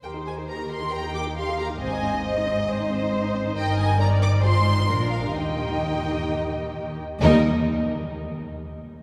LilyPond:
<<
  \new Staff \with { instrumentName = "Violin section" } { \time 4/4 \key ees \major \tempo 4 = 135 g''8 aes''8 bes''8 c'''8 bes''8 d'''8 c'''8 bes''8 | aes''4 ees''2~ ees''8 r8 | g''8 aes''8 bes''8 d'''8 c'''4. f''8 | ees''2.~ ees''8 r8 |
ees''8 r2. r8 | }
  \new Staff \with { instrumentName = "Violin section" } { \time 4/4 \key ees \major c''4 bes'4 g''4 f''4 | ees''2 c''2 | ees''4 d''4 c''4 bes'4 | g''2.~ g''8 r8 |
<ees' bes'>8 r2. r8 | }
  \new Staff \with { instrumentName = "Viola section" } { \time 4/4 \key ees \major <g' bes'>16 <ees' g'>16 <g' bes'>16 <ees' g'>16 <g' bes'>16 <ees' g'>16 <g' bes'>16 <ees' g'>16 <g' bes'>16 <ees' g'>16 <g' bes'>16 <ees' g'>16 <g' bes'>16 <ees' g'>16 <g' bes'>16 <ees' g'>16 | <c' c''>16 <ees' ees''>16 <c' c''>16 <ees' ees''>16 <c' c''>16 <ees' ees''>16 <c' c''>16 <ees' ees''>16 <c' c''>16 <ees' ees''>16 <c' c''>16 <ees' ees''>16 <c' c''>16 <ees' ees''>16 <c' c''>16 <ees' ees''>16 | <ees' bes'>4 <ees' bes'>4 <ees' f'>4 <d' f'>4 | <ees' g'>2.~ <ees' g'>8 r8 |
<g bes>8 r2. r8 | }
  \new Staff \with { instrumentName = "Cello section" } { \clef bass \time 4/4 \key ees \major ees1 | aes,1 | g,2 aes,4 bes,4 | ees2.~ ees8 r8 |
ees,8 r2. r8 | }
  \new Staff \with { instrumentName = "Double bass section" } { \clef bass \time 4/4 \key ees \major ees,1 | aes,,1 | g,,2 aes,,4 bes,,4 | ees,2.~ ees,8 r8 |
ees,8 r2. r8 | }
>>